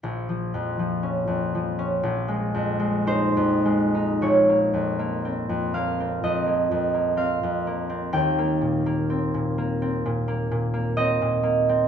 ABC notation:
X:1
M:4/4
L:1/16
Q:1/4=61
K:Bbdor
V:1 name="Harp"
z12 c4 | d6 f2 e4 f4 | g12 e4 |]
V:2 name="Harp"
B,,, F, F,, F, D F,, F, D B,,, A, F,, A, E F,, A, E | B,,, B, F,, B, C F,, B, C F,, B, F,, B, C F,, B, C | E,, B, B,, B, C B,, B, C B,, B, B,, B, C B,, B, C |]